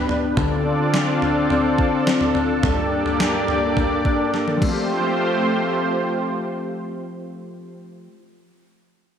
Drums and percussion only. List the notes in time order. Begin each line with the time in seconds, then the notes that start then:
0.09 floor tom
0.37 kick, floor tom
0.94 snare
1.22 floor tom
1.50 floor tom
1.78 kick
2.07 snare
2.21 floor tom
2.35 floor tom
2.63 kick, floor tom
3.06 floor tom
3.20 snare
3.48 floor tom
3.77 kick, floor tom
4.05 kick
4.34 snare
4.48 high tom
4.62 kick, crash